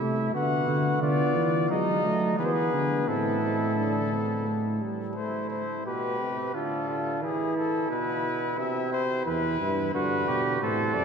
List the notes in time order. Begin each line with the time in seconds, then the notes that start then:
Already playing: E4 E5
0.00 C3 A3
0.34 D3 B3 F#4 F#5
0.68 D3
1.02 D3 B3 F4 D5
1.36 E3
1.70 F#3 G#3 D#4 D#5
2.05 F#3 A3
2.38 E3 B3 G#4 B4
2.45 C5
2.53 B4
2.73 D3
3.08 A2 C4 E4 A4
3.42 C4
3.77 D4
4.12 C4
4.46 A3
4.81 G3
5.16 A3 E4 C5
5.49 C5
5.86 B2 G4 B4
6.20 C3
6.54 D3 F4 A4
6.89 F4
7.22 E3 E4 G#4
7.57 A4
7.90 B2 B4
8.58 C3 E5
8.93 C5
9.25 E2 E3 E4 B4
9.60 G2 E3
9.93 G2 D3 F#4 B4
10.28 B2 G4
10.61 A2 C3 A4 C5
10.94 F#2 D5